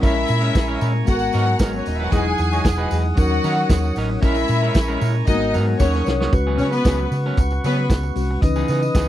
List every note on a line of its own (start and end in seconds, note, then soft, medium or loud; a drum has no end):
0.00 0.23 A#1 loud
0.00 1.04 G#3 medium
0.00 0.21 G#3 medium
0.00 1.05 C#4 medium
0.00 0.15 C#4 medium
0.00 1.05 E4 medium
0.00 0.80 E4 medium
0.00 0.14 E4 medium
0.00 1.06 A#4 medium
0.00 0.14 A#4 medium
0.00 0.80 E5 loud
0.00 1.06 G#5 medium
0.00 2.11 A#5 medium
0.00 1.07 C#6 medium
0.00 kick loud
0.00 closed hi-hat medium
0.00 tambourine medium
0.15 muted clean electric guitar stroke soft
0.28 0.49 A#2 medium
0.28 muted clean electric guitar stroke soft
0.28 open hi-hat medium
0.28 tambourine medium
0.41 0.54 G#3 medium
0.41 0.55 C#4 medium
0.41 0.55 E4 medium
0.41 0.55 A#4 medium
0.41 tambourine soft
0.55 0.75 A#1 medium
0.55 muted clean electric guitar stroke soft
0.55 kick loud
0.55 snare loud
0.55 closed hi-hat medium
0.55 tambourine medium
0.68 0.80 G#3 medium
0.68 0.81 C#4 medium
0.68 0.81 E4 medium
0.68 0.81 A#4 medium
0.81 1.01 A#2 loud
0.81 0.96 G#3 medium
0.81 0.93 C#4 medium
0.81 0.92 E4 medium
0.81 0.92 A#4 medium
0.81 open hi-hat medium
0.81 tambourine medium
0.93 muted clean electric guitar stroke soft
1.05 1.28 G#1 loud
1.05 2.09 G#3 medium
1.05 2.10 B3 medium
1.05 2.10 F#4 medium
1.05 1.71 F#4 medium
1.05 1.14 A4 medium
1.05 1.71 F#5 loud
1.05 4.20 F#5 medium
1.05 2.11 G#5 medium
1.05 kick loud
1.05 closed hi-hat medium
1.05 tambourine medium
1.15 2.14 A#4 medium
1.19 muted clean electric guitar stroke soft
1.19 tambourine soft
1.33 1.54 G#2 medium
1.33 1.53 F#3 medium
1.33 1.46 B3 medium
1.33 1.46 D#4 loud
1.33 1.46 A#4 medium
1.33 open hi-hat medium
1.33 tambourine medium
1.47 muted clean electric guitar stroke soft
1.59 1.80 G#1 medium
1.59 1.79 F#3 medium
1.59 1.74 B3 medium
1.59 1.73 D#4 medium
1.59 1.72 A#4 medium
1.59 kick loud
1.59 snare loud
1.59 closed hi-hat medium
1.59 tambourine medium
1.73 muted clean electric guitar stroke soft
1.73 tambourine soft
1.77 1.86 C#4 medium
1.77 1.87 C#5 medium
1.85 2.06 D#1 medium
1.85 1.96 D#4 soft
1.85 1.96 D#5 medium
1.85 muted clean electric guitar stroke soft
1.85 open hi-hat medium
1.85 tambourine soft
1.96 2.05 E4 medium
1.96 2.13 B4 medium
1.96 2.04 E5 medium
2.00 2.12 F#3 medium
2.00 2.13 B3 medium
2.00 2.12 D#4 medium
2.04 2.13 F#4 medium
2.04 2.13 F#5 medium
2.11 2.32 E1 medium
2.11 3.15 F#3 medium
2.11 2.31 G#3 medium
2.11 3.15 D#4 medium
2.11 2.26 D#4 medium
2.11 3.15 E4 medium
2.11 2.25 F#4 medium
2.11 3.17 G#4 medium
2.11 3.16 G#4 medium
2.11 2.90 G#4 medium
2.11 2.25 B4 medium
2.11 2.90 G#5 medium
2.11 4.20 D#6 medium
2.11 kick loud
2.11 closed hi-hat medium
2.11 tambourine medium
2.26 muted clean electric guitar stroke medium
2.38 2.58 E2 medium
2.38 muted clean electric guitar stroke soft
2.38 open hi-hat medium
2.38 tambourine medium
2.53 2.64 G#3 medium
2.53 2.65 D#4 medium
2.53 2.65 F#4 medium
2.53 2.65 C#5 medium
2.53 tambourine soft
2.64 2.85 E1 medium
2.64 kick loud
2.64 snare loud
2.64 closed hi-hat medium
2.64 tambourine medium
2.78 2.90 G#3 medium
2.78 2.90 D#4 medium
2.78 2.90 F#4 medium
2.78 2.90 B4 loud
2.91 3.11 E2 medium
2.91 3.06 G#3 medium
2.91 3.04 D#4 soft
2.91 3.04 F#4 medium
2.91 3.03 B4 medium
2.91 open hi-hat medium
2.91 tambourine medium
3.04 muted clean electric guitar stroke soft
3.16 3.37 D#2 loud
3.16 4.20 F#3 medium
3.16 4.20 C#4 medium
3.16 4.20 D#4 medium
3.16 3.94 F#4 medium
3.16 4.21 A#4 medium
3.16 4.22 C#5 medium
3.16 3.95 F#5 medium
3.16 kick loud
3.16 closed hi-hat medium
3.16 tambourine medium
3.31 muted clean electric guitar stroke soft
3.44 3.64 D#3 medium
3.44 3.63 F#3 medium
3.44 3.57 C#4 medium
3.44 3.57 D#4 medium
3.44 3.56 A#4 loud
3.44 snare soft
3.44 open hi-hat medium
3.44 tambourine medium
3.58 muted clean electric guitar stroke soft
3.70 3.90 D#2 medium
3.70 muted clean electric guitar stroke soft
3.70 kick loud
3.70 snare loud
3.70 closed hi-hat medium
3.70 tambourine loud
3.84 muted clean electric guitar stroke soft
3.84 tambourine soft
3.96 4.16 A1 medium
3.96 4.16 F#3 medium
3.96 4.10 C#4 medium
3.96 4.10 D#4 medium
3.96 4.09 A#4 medium
3.96 open hi-hat medium
3.96 tambourine soft
4.10 muted clean electric guitar stroke soft
4.21 4.42 A#1 medium
4.21 5.25 G#3 medium
4.21 4.42 G#3 medium
4.21 5.25 C#4 medium
4.21 4.36 C#4 medium
4.21 5.26 E4 medium
4.21 5.00 E4 medium
4.21 4.36 E4 medium
4.21 5.26 A#4 medium
4.21 4.36 A#4 medium
4.21 5.00 E5 medium
4.21 5.26 G#5 medium
4.21 5.78 A#5 medium
4.21 5.26 C#6 medium
4.21 kick loud
4.21 closed hi-hat medium
4.21 tambourine soft
4.35 muted clean electric guitar stroke soft
4.35 tambourine soft
4.48 4.69 A#2 medium
4.48 muted clean electric guitar stroke soft
4.48 open hi-hat medium
4.48 tambourine medium
4.63 4.75 G#3 medium
4.63 4.75 C#4 medium
4.63 4.75 E4 medium
4.63 4.76 A#4 medium
4.74 4.95 A#1 medium
4.74 muted clean electric guitar stroke soft
4.74 kick loud
4.74 snare loud
4.74 closed hi-hat medium
4.74 tambourine medium
4.88 5.00 G#3 medium
4.88 5.00 C#4 medium
4.88 5.00 E4 medium
4.88 5.00 A#4 medium
5.01 5.21 A#2 loud
5.01 5.16 G#3 medium
5.01 5.15 C#4 medium
5.01 5.14 E4 medium
5.01 5.14 A#4 medium
5.01 open hi-hat medium
5.01 tambourine medium
5.15 muted clean electric guitar stroke medium
5.27 5.56 G#1 loud
5.27 5.80 G#3 medium
5.27 5.34 A#3 medium
5.27 5.53 D#4 medium
5.27 5.81 F#4 medium
5.27 5.79 A#4 medium
5.27 5.53 D#5 medium
5.27 6.32 F#5 medium
5.27 5.81 G#5 medium
5.27 kick loud
5.27 closed hi-hat medium
5.27 tambourine medium
5.35 5.84 B3 medium
5.40 muted clean electric guitar stroke soft
5.54 5.74 G#2 medium
5.54 5.73 F#3 medium
5.54 5.68 B3 medium
5.54 5.66 D#4 medium
5.54 5.67 A#4 medium
5.54 open hi-hat medium
5.54 tambourine medium
5.68 muted clean electric guitar stroke soft
5.80 6.00 D#2 medium
5.80 6.32 F#3 medium
5.80 5.99 A#3 medium
5.80 6.31 C#4 medium
5.80 6.06 C#4 medium
5.80 5.94 C#4 medium
5.80 6.33 D#4 medium
5.80 5.94 F#4 medium
5.80 6.33 A#4 medium
5.80 5.93 A#4 medium
5.80 6.06 C#5 medium
5.80 6.34 C#5 medium
5.80 kick loud
5.80 snare soft
5.80 tambourine medium
5.84 6.34 D#6 medium
5.94 muted clean electric guitar stroke medium
5.94 snare medium
5.94 tambourine soft
6.06 6.26 C2 medium
6.06 muted clean electric guitar stroke soft
6.06 snare medium
6.06 tambourine soft
6.20 6.33 A#3 soft
6.20 6.33 C#4 medium
6.20 6.34 F#4 medium
6.20 6.34 C#5 medium
6.20 snare medium
6.31 6.60 C#2 loud
6.31 8.12 G#3 medium
6.31 8.12 C#4 medium
6.31 8.12 F#4 medium
6.31 8.13 B4 medium
6.31 9.08 B4 medium
6.31 8.41 F#5 medium
6.31 8.41 C#6 medium
6.31 muted clean electric guitar stroke soft
6.31 kick loud
6.31 closed hi-hat medium
6.31 tambourine soft
6.47 6.59 F#3 medium
6.47 6.60 B3 medium
6.47 6.60 C#4 medium
6.47 6.60 G#4 medium
6.58 6.78 C#3 medium
6.58 6.74 F#3 medium
6.58 6.74 B3 medium
6.58 6.69 C#4 medium
6.58 6.72 C#4 medium
6.58 6.72 G#4 medium
6.58 6.69 C#5 medium
6.58 open hi-hat medium
6.58 tambourine soft
6.72 7.09 B3 medium
6.72 7.09 B4 medium
6.72 muted clean electric guitar stroke soft
6.72 tambourine soft
6.84 7.05 C#2 medium
6.84 7.04 F#3 medium
6.84 7.00 B3 medium
6.84 6.99 C#4 medium
6.84 6.98 G#4 medium
6.84 kick loud
6.84 snare loud
6.84 closed hi-hat medium
6.84 tambourine medium
7.00 muted clean electric guitar stroke soft
7.11 7.31 C#3 medium
7.11 muted clean electric guitar stroke soft
7.11 open hi-hat medium
7.11 tambourine medium
7.26 7.38 F#3 medium
7.26 7.38 B3 medium
7.26 7.39 C#4 medium
7.26 7.40 A#4 medium
7.37 7.57 C#2 loud
7.37 muted clean electric guitar stroke soft
7.37 kick loud
7.37 closed hi-hat medium
7.37 tambourine medium
7.50 muted clean electric guitar stroke medium
7.50 tambourine soft
7.64 7.91 C#3 medium
7.64 7.83 F#3 medium
7.64 7.85 B3 medium
7.64 7.77 B3 medium
7.64 7.77 C#4 medium
7.64 7.77 G#4 medium
7.64 7.85 B4 medium
7.64 snare soft
7.64 open hi-hat medium
7.64 tambourine medium
7.78 muted clean electric guitar stroke soft
7.90 8.09 C#2 medium
7.90 muted clean electric guitar stroke soft
7.90 kick loud
7.90 snare loud
7.90 closed hi-hat medium
7.90 tambourine medium
8.03 muted clean electric guitar stroke soft
8.03 tambourine soft
8.15 8.36 C2 medium
8.15 8.42 G#3 medium
8.15 8.41 C#4 medium
8.15 8.42 F#4 soft
8.15 8.43 B4 medium
8.15 open hi-hat medium
8.15 tambourine soft
8.31 muted clean electric guitar stroke soft
8.41 8.62 C#2 medium
8.41 8.48 D#3 medium
8.41 9.08 C#4 medium
8.41 9.08 D#4 medium
8.41 9.08 B4 medium
8.41 9.08 D#5 medium
8.41 9.08 D#6 medium
8.41 muted clean electric guitar stroke medium
8.41 kick loud
8.41 closed hi-hat medium
8.41 tambourine soft
8.47 9.08 E3 medium
8.56 8.68 E3 medium
8.56 8.69 B3 medium
8.56 8.69 D#4 medium
8.56 8.70 G#4 medium
8.56 tambourine soft
8.68 8.88 C#3 medium
8.68 8.84 E3 medium
8.68 8.82 B3 medium
8.68 8.82 D#4 medium
8.68 8.81 G#4 medium
8.68 open hi-hat medium
8.68 tambourine medium
8.82 muted clean electric guitar stroke soft
8.82 tambourine soft
8.94 9.08 C#2 medium
8.94 9.08 E3 medium
8.94 9.08 B3 medium
8.94 9.08 D#4 medium
8.94 9.08 G#4 loud
8.94 kick loud
8.94 snare loud
8.94 closed hi-hat medium
8.94 tambourine medium